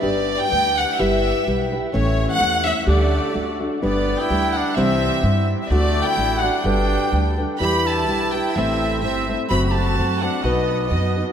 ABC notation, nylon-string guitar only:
X:1
M:2/4
L:1/8
Q:"Swing" 1/4=127
K:G
V:1 name="Nylon-string guitar"
[G,DGB]2 [G,DGB]2 | [G,EGB]2 [G,EGB] [EGB] | [A,,E,A,^CE^c]2 [A,CEc] [A,CEc] | [D,G,DGA]2 [A,DFA] [DFA] |
[G,DGB]2 [G,DGB]2 | [C,E,G,CEc]2 [G,CEc]2 | [D,A,DFd]2 [A,DFd] [DFd] | [G,DAB]2 [G,DAB] [DAB] |
[K:Em] [E,G,EGB]2 [G,EGB] [EGB] | [A,,E,A,CEc]2 [A,CEc] [A,CEc] | [F,A,CFc]2 [A,CFc] [CFc] | [B,^DFB]2 [B,DFB] [DFB] |]